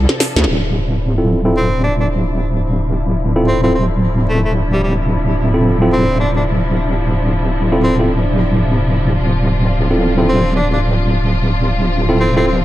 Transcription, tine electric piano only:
0, 0, Header, 1, 2, 480
1, 0, Start_track
1, 0, Key_signature, -1, "minor"
1, 0, Tempo, 545455
1, 418, Time_signature, 4, 2, 24, 8
1, 11130, End_track
2, 0, Start_track
2, 0, Title_t, "Tine electric piano"
2, 0, Program_c, 0, 4
2, 1037, Note_on_c, 0, 65, 61
2, 1038, Note_on_c, 0, 60, 68
2, 1038, Note_on_c, 0, 64, 61
2, 1038, Note_on_c, 0, 69, 74
2, 1221, Note_off_c, 0, 60, 0
2, 1221, Note_off_c, 0, 64, 0
2, 1221, Note_off_c, 0, 65, 0
2, 1221, Note_off_c, 0, 69, 0
2, 1277, Note_on_c, 0, 60, 82
2, 1278, Note_on_c, 0, 64, 78
2, 1278, Note_on_c, 0, 65, 75
2, 1278, Note_on_c, 0, 69, 95
2, 1461, Note_off_c, 0, 60, 0
2, 1461, Note_off_c, 0, 64, 0
2, 1461, Note_off_c, 0, 65, 0
2, 1461, Note_off_c, 0, 69, 0
2, 2957, Note_on_c, 0, 60, 79
2, 2957, Note_on_c, 0, 64, 76
2, 2958, Note_on_c, 0, 65, 74
2, 2958, Note_on_c, 0, 69, 91
2, 3140, Note_off_c, 0, 64, 0
2, 3141, Note_off_c, 0, 60, 0
2, 3141, Note_off_c, 0, 65, 0
2, 3141, Note_off_c, 0, 69, 0
2, 3201, Note_on_c, 0, 60, 80
2, 3201, Note_on_c, 0, 64, 73
2, 3201, Note_on_c, 0, 65, 74
2, 3201, Note_on_c, 0, 69, 86
2, 3298, Note_off_c, 0, 60, 0
2, 3298, Note_off_c, 0, 64, 0
2, 3298, Note_off_c, 0, 65, 0
2, 3298, Note_off_c, 0, 69, 0
2, 4876, Note_on_c, 0, 60, 68
2, 4876, Note_on_c, 0, 64, 61
2, 4876, Note_on_c, 0, 65, 61
2, 4876, Note_on_c, 0, 69, 74
2, 5060, Note_off_c, 0, 60, 0
2, 5060, Note_off_c, 0, 64, 0
2, 5060, Note_off_c, 0, 65, 0
2, 5060, Note_off_c, 0, 69, 0
2, 5119, Note_on_c, 0, 60, 85
2, 5119, Note_on_c, 0, 64, 77
2, 5120, Note_on_c, 0, 65, 78
2, 5120, Note_on_c, 0, 69, 91
2, 5301, Note_off_c, 0, 64, 0
2, 5302, Note_off_c, 0, 60, 0
2, 5302, Note_off_c, 0, 65, 0
2, 5302, Note_off_c, 0, 69, 0
2, 6795, Note_on_c, 0, 65, 75
2, 6796, Note_on_c, 0, 60, 84
2, 6796, Note_on_c, 0, 64, 73
2, 6796, Note_on_c, 0, 69, 93
2, 6979, Note_off_c, 0, 65, 0
2, 6980, Note_off_c, 0, 60, 0
2, 6980, Note_off_c, 0, 64, 0
2, 6980, Note_off_c, 0, 69, 0
2, 7035, Note_on_c, 0, 60, 77
2, 7035, Note_on_c, 0, 65, 70
2, 7035, Note_on_c, 0, 69, 86
2, 7036, Note_on_c, 0, 64, 72
2, 7135, Note_off_c, 0, 60, 0
2, 7135, Note_off_c, 0, 65, 0
2, 7136, Note_off_c, 0, 64, 0
2, 7136, Note_off_c, 0, 69, 0
2, 8716, Note_on_c, 0, 64, 61
2, 8717, Note_on_c, 0, 60, 68
2, 8717, Note_on_c, 0, 65, 63
2, 8717, Note_on_c, 0, 69, 73
2, 8900, Note_off_c, 0, 64, 0
2, 8901, Note_off_c, 0, 60, 0
2, 8901, Note_off_c, 0, 65, 0
2, 8901, Note_off_c, 0, 69, 0
2, 8955, Note_on_c, 0, 60, 83
2, 8956, Note_on_c, 0, 64, 78
2, 8956, Note_on_c, 0, 65, 76
2, 8956, Note_on_c, 0, 69, 93
2, 9140, Note_off_c, 0, 60, 0
2, 9140, Note_off_c, 0, 64, 0
2, 9140, Note_off_c, 0, 65, 0
2, 9140, Note_off_c, 0, 69, 0
2, 10638, Note_on_c, 0, 64, 76
2, 10638, Note_on_c, 0, 69, 89
2, 10639, Note_on_c, 0, 60, 83
2, 10639, Note_on_c, 0, 65, 78
2, 10821, Note_off_c, 0, 64, 0
2, 10821, Note_off_c, 0, 69, 0
2, 10822, Note_off_c, 0, 60, 0
2, 10822, Note_off_c, 0, 65, 0
2, 10880, Note_on_c, 0, 60, 82
2, 10880, Note_on_c, 0, 65, 73
2, 10881, Note_on_c, 0, 64, 72
2, 10881, Note_on_c, 0, 69, 89
2, 10978, Note_off_c, 0, 60, 0
2, 10978, Note_off_c, 0, 64, 0
2, 10978, Note_off_c, 0, 65, 0
2, 10978, Note_off_c, 0, 69, 0
2, 11130, End_track
0, 0, End_of_file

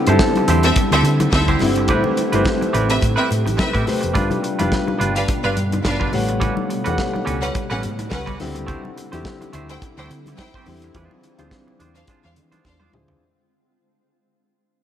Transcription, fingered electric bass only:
0, 0, Header, 1, 2, 480
1, 0, Start_track
1, 0, Key_signature, 0, "minor"
1, 0, Tempo, 566038
1, 1604, Time_signature, 4, 2, 24, 8
1, 12579, End_track
2, 0, Start_track
2, 0, Title_t, "Fingered electric bass"
2, 0, Program_c, 0, 33
2, 63, Note_on_c, 0, 43, 100
2, 145, Note_off_c, 0, 43, 0
2, 406, Note_on_c, 0, 40, 94
2, 597, Note_off_c, 0, 40, 0
2, 775, Note_on_c, 0, 38, 99
2, 860, Note_off_c, 0, 38, 0
2, 875, Note_on_c, 0, 50, 102
2, 1070, Note_off_c, 0, 50, 0
2, 1128, Note_on_c, 0, 38, 92
2, 1318, Note_off_c, 0, 38, 0
2, 1362, Note_on_c, 0, 31, 87
2, 1599, Note_off_c, 0, 31, 0
2, 1599, Note_on_c, 0, 33, 108
2, 1708, Note_off_c, 0, 33, 0
2, 1981, Note_on_c, 0, 31, 101
2, 2064, Note_off_c, 0, 31, 0
2, 2327, Note_on_c, 0, 33, 94
2, 2517, Note_off_c, 0, 33, 0
2, 2565, Note_on_c, 0, 45, 110
2, 2672, Note_off_c, 0, 45, 0
2, 2806, Note_on_c, 0, 45, 95
2, 2913, Note_off_c, 0, 45, 0
2, 2940, Note_on_c, 0, 33, 83
2, 3024, Note_off_c, 0, 33, 0
2, 3178, Note_on_c, 0, 45, 101
2, 3262, Note_off_c, 0, 45, 0
2, 3423, Note_on_c, 0, 29, 92
2, 3522, Note_off_c, 0, 29, 0
2, 3522, Note_on_c, 0, 31, 105
2, 3630, Note_off_c, 0, 31, 0
2, 3905, Note_on_c, 0, 29, 87
2, 3986, Note_off_c, 0, 29, 0
2, 4245, Note_on_c, 0, 31, 100
2, 4436, Note_off_c, 0, 31, 0
2, 4617, Note_on_c, 0, 31, 96
2, 4702, Note_off_c, 0, 31, 0
2, 4721, Note_on_c, 0, 43, 97
2, 4913, Note_off_c, 0, 43, 0
2, 4966, Note_on_c, 0, 31, 79
2, 5156, Note_off_c, 0, 31, 0
2, 5207, Note_on_c, 0, 33, 108
2, 5504, Note_off_c, 0, 33, 0
2, 5823, Note_on_c, 0, 40, 86
2, 5905, Note_off_c, 0, 40, 0
2, 6164, Note_on_c, 0, 37, 101
2, 6355, Note_off_c, 0, 37, 0
2, 6538, Note_on_c, 0, 33, 89
2, 6653, Note_on_c, 0, 45, 92
2, 6666, Note_off_c, 0, 33, 0
2, 6840, Note_off_c, 0, 45, 0
2, 6885, Note_on_c, 0, 37, 80
2, 7075, Note_off_c, 0, 37, 0
2, 7132, Note_on_c, 0, 38, 99
2, 7426, Note_off_c, 0, 38, 0
2, 7741, Note_on_c, 0, 40, 88
2, 7823, Note_off_c, 0, 40, 0
2, 8086, Note_on_c, 0, 38, 89
2, 8275, Note_off_c, 0, 38, 0
2, 8459, Note_on_c, 0, 38, 86
2, 8542, Note_off_c, 0, 38, 0
2, 8569, Note_on_c, 0, 50, 90
2, 8758, Note_off_c, 0, 50, 0
2, 9050, Note_on_c, 0, 40, 95
2, 9238, Note_off_c, 0, 40, 0
2, 9285, Note_on_c, 0, 40, 107
2, 9391, Note_off_c, 0, 40, 0
2, 9657, Note_on_c, 0, 38, 95
2, 9741, Note_off_c, 0, 38, 0
2, 10009, Note_on_c, 0, 40, 94
2, 10197, Note_off_c, 0, 40, 0
2, 10386, Note_on_c, 0, 40, 94
2, 10487, Note_on_c, 0, 52, 88
2, 10500, Note_off_c, 0, 40, 0
2, 10676, Note_off_c, 0, 52, 0
2, 10728, Note_on_c, 0, 40, 81
2, 10917, Note_off_c, 0, 40, 0
2, 10972, Note_on_c, 0, 38, 80
2, 11159, Note_off_c, 0, 38, 0
2, 12579, End_track
0, 0, End_of_file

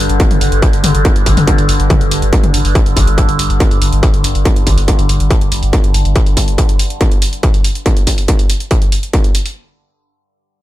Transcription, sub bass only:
0, 0, Header, 1, 2, 480
1, 0, Start_track
1, 0, Tempo, 425532
1, 1183, Time_signature, 4, 2, 24, 8
1, 11980, End_track
2, 0, Start_track
2, 0, Title_t, "Sub bass"
2, 0, Program_c, 0, 38
2, 105, Note_on_c, 0, 31, 79
2, 221, Note_off_c, 0, 31, 0
2, 345, Note_on_c, 0, 31, 71
2, 456, Note_off_c, 0, 31, 0
2, 463, Note_on_c, 0, 31, 99
2, 578, Note_off_c, 0, 31, 0
2, 585, Note_on_c, 0, 31, 78
2, 701, Note_off_c, 0, 31, 0
2, 825, Note_on_c, 0, 31, 76
2, 936, Note_off_c, 0, 31, 0
2, 943, Note_on_c, 0, 31, 97
2, 1058, Note_off_c, 0, 31, 0
2, 1065, Note_on_c, 0, 31, 82
2, 1181, Note_off_c, 0, 31, 0
2, 1305, Note_on_c, 0, 31, 75
2, 1417, Note_off_c, 0, 31, 0
2, 1424, Note_on_c, 0, 31, 102
2, 1538, Note_off_c, 0, 31, 0
2, 1545, Note_on_c, 0, 31, 86
2, 1661, Note_off_c, 0, 31, 0
2, 1785, Note_on_c, 0, 31, 76
2, 1896, Note_off_c, 0, 31, 0
2, 1903, Note_on_c, 0, 31, 98
2, 2019, Note_off_c, 0, 31, 0
2, 2026, Note_on_c, 0, 31, 79
2, 2141, Note_off_c, 0, 31, 0
2, 2265, Note_on_c, 0, 31, 75
2, 2376, Note_off_c, 0, 31, 0
2, 2382, Note_on_c, 0, 31, 99
2, 2498, Note_off_c, 0, 31, 0
2, 2504, Note_on_c, 0, 31, 76
2, 2620, Note_off_c, 0, 31, 0
2, 2745, Note_on_c, 0, 31, 75
2, 2856, Note_off_c, 0, 31, 0
2, 2863, Note_on_c, 0, 31, 98
2, 2978, Note_off_c, 0, 31, 0
2, 2985, Note_on_c, 0, 31, 80
2, 3101, Note_off_c, 0, 31, 0
2, 3226, Note_on_c, 0, 31, 76
2, 3337, Note_off_c, 0, 31, 0
2, 3344, Note_on_c, 0, 31, 102
2, 3459, Note_off_c, 0, 31, 0
2, 3465, Note_on_c, 0, 31, 81
2, 3581, Note_off_c, 0, 31, 0
2, 3706, Note_on_c, 0, 31, 78
2, 3816, Note_off_c, 0, 31, 0
2, 3823, Note_on_c, 0, 31, 97
2, 3939, Note_off_c, 0, 31, 0
2, 3946, Note_on_c, 0, 31, 79
2, 4061, Note_off_c, 0, 31, 0
2, 4186, Note_on_c, 0, 31, 72
2, 4297, Note_off_c, 0, 31, 0
2, 4304, Note_on_c, 0, 31, 96
2, 4420, Note_off_c, 0, 31, 0
2, 4426, Note_on_c, 0, 31, 80
2, 4542, Note_off_c, 0, 31, 0
2, 4666, Note_on_c, 0, 31, 73
2, 4777, Note_off_c, 0, 31, 0
2, 4784, Note_on_c, 0, 31, 101
2, 4899, Note_off_c, 0, 31, 0
2, 4906, Note_on_c, 0, 31, 81
2, 5021, Note_off_c, 0, 31, 0
2, 5146, Note_on_c, 0, 31, 77
2, 5257, Note_off_c, 0, 31, 0
2, 5264, Note_on_c, 0, 31, 102
2, 5379, Note_off_c, 0, 31, 0
2, 5385, Note_on_c, 0, 31, 85
2, 5501, Note_off_c, 0, 31, 0
2, 5626, Note_on_c, 0, 31, 77
2, 5737, Note_off_c, 0, 31, 0
2, 5743, Note_on_c, 0, 31, 94
2, 5859, Note_off_c, 0, 31, 0
2, 5866, Note_on_c, 0, 31, 79
2, 5981, Note_off_c, 0, 31, 0
2, 6106, Note_on_c, 0, 31, 73
2, 6217, Note_off_c, 0, 31, 0
2, 6223, Note_on_c, 0, 31, 97
2, 6340, Note_off_c, 0, 31, 0
2, 6346, Note_on_c, 0, 31, 79
2, 6461, Note_off_c, 0, 31, 0
2, 6587, Note_on_c, 0, 31, 74
2, 6698, Note_off_c, 0, 31, 0
2, 6705, Note_on_c, 0, 31, 95
2, 6820, Note_off_c, 0, 31, 0
2, 6827, Note_on_c, 0, 31, 82
2, 6941, Note_off_c, 0, 31, 0
2, 11980, End_track
0, 0, End_of_file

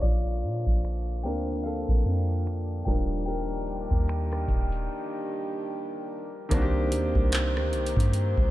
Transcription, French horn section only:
0, 0, Header, 1, 2, 480
1, 0, Start_track
1, 0, Tempo, 810811
1, 15, Time_signature, 4, 2, 24, 8
1, 5036, End_track
2, 0, Start_track
2, 0, Title_t, "French horn section"
2, 0, Program_c, 0, 60
2, 0, Note_on_c, 0, 65, 86
2, 15, Note_on_c, 0, 50, 77
2, 15, Note_on_c, 0, 53, 77
2, 15, Note_on_c, 0, 58, 75
2, 1672, Note_off_c, 0, 65, 0
2, 1678, Note_off_c, 0, 50, 0
2, 1678, Note_off_c, 0, 53, 0
2, 1696, Note_on_c, 0, 51, 85
2, 1696, Note_on_c, 0, 55, 76
2, 1696, Note_on_c, 0, 62, 76
2, 1696, Note_on_c, 0, 67, 88
2, 3755, Note_off_c, 0, 51, 0
2, 3755, Note_off_c, 0, 55, 0
2, 3755, Note_off_c, 0, 58, 0
2, 3755, Note_off_c, 0, 62, 0
2, 3755, Note_off_c, 0, 67, 0
2, 3856, Note_on_c, 0, 51, 80
2, 3856, Note_on_c, 0, 67, 82
2, 3856, Note_on_c, 0, 72, 94
2, 3857, Note_on_c, 0, 58, 80
2, 5036, Note_off_c, 0, 51, 0
2, 5036, Note_off_c, 0, 58, 0
2, 5036, Note_off_c, 0, 67, 0
2, 5036, Note_off_c, 0, 72, 0
2, 5036, End_track
0, 0, End_of_file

